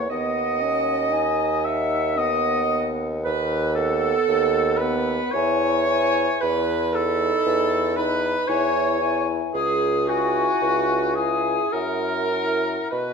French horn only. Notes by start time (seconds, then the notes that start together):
0.09 B3
0.61 C#4
1.11 D#4
2.17 B3
3.75 B3
4.79 B3
5.33 E4
5.88 E4
6.95 D#4
7.96 D#4
8.49 E4
9.01 E4
10.07 E4
11.16 E4
11.73 E4
12.31 E4